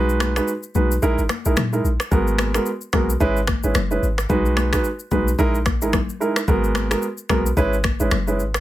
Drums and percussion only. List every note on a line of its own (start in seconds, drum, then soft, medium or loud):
0.09 shaker soft
0.20 finger snap medium
0.20 cross-stick loud
0.20 high conga medium
0.20 shaker soft
0.36 finger snap medium
0.36 cross-stick medium
0.36 shaker medium
0.48 shaker medium
0.63 shaker medium
0.75 high conga medium
0.75 low conga medium
0.75 shaker soft
0.92 shaker loud
1.02 shaker medium
1.18 shaker medium
1.29 finger snap medium
1.29 cross-stick medium
1.29 high conga medium
1.29 shaker medium
1.45 shaker medium
1.57 finger snap medium
1.57 cross-stick loud
1.57 high conga medium
1.57 low conga medium
1.57 shaker medium
1.73 shaker medium
1.85 shaker soft
2.00 finger snap medium
2.00 cross-stick medium
2.00 shaker medium
2.11 kick loud
2.11 low conga medium
2.11 shaker medium
2.27 shaker soft
2.38 finger snap medium
2.38 cross-stick loud
2.38 high conga medium
2.38 shaker soft
2.54 finger snap medium
2.54 cross-stick medium
2.54 shaker medium
2.66 shaker medium
2.81 shaker soft
2.93 finger snap medium
2.93 kick medium
2.93 cross-stick loud
2.93 high conga medium
2.93 low conga medium
2.93 shaker soft
3.10 shaker loud
3.20 kick medium
3.20 shaker medium
3.37 shaker medium
3.47 finger snap medium
3.47 kick loud
3.47 cross-stick loud
3.47 high conga medium
3.47 shaker medium
3.63 shaker medium
3.75 finger snap medium
3.75 cross-stick loud
3.75 high conga medium
3.75 low conga medium
3.75 shaker medium
3.91 shaker medium
4.03 shaker soft
4.18 finger snap medium
4.18 cross-stick medium
4.18 shaker medium
4.30 kick loud
4.30 low conga medium
4.30 shaker medium
4.46 shaker soft
4.56 finger snap medium
4.56 cross-stick loud
4.56 high conga medium
4.56 shaker soft
4.73 finger snap medium
4.73 kick medium
4.73 cross-stick medium
4.73 shaker medium
4.84 shaker medium
4.99 shaker soft
5.11 kick medium
5.11 high conga medium
5.11 low conga medium
5.11 shaker soft
5.28 shaker medium
5.39 kick medium
5.39 shaker medium
5.55 shaker medium
5.66 finger snap medium
5.66 kick loud
5.66 cross-stick loud
5.66 high conga medium
5.66 shaker medium
5.82 shaker medium
5.93 finger snap medium
5.93 kick medium
5.93 cross-stick loud
5.93 high conga medium
5.93 low conga medium
5.93 shaker medium
6.09 shaker medium
6.21 shaker soft
6.36 finger snap medium
6.36 cross-stick medium
6.36 shaker medium
6.48 kick loud
6.48 low conga medium
6.48 shaker medium
6.64 shaker soft
6.75 finger snap medium
6.75 cross-stick medium
6.75 high conga medium
6.75 shaker soft
6.91 finger snap medium
6.91 cross-stick medium
6.91 shaker medium
7.02 shaker medium
7.18 shaker medium
7.29 finger snap medium
7.29 kick medium
7.29 cross-stick loud
7.29 high conga medium
7.29 low conga medium
7.29 shaker soft
7.46 shaker loud
7.57 kick medium
7.57 shaker medium
7.73 shaker medium
7.84 finger snap medium
7.84 kick loud
7.84 cross-stick loud
7.84 high conga medium
7.84 shaker medium
8.00 shaker medium
8.11 finger snap medium
8.11 cross-stick loud
8.11 high conga medium
8.11 low conga medium
8.11 shaker medium
8.28 shaker medium
8.40 shaker soft
8.54 finger snap medium
8.54 cross-stick loud
8.54 shaker medium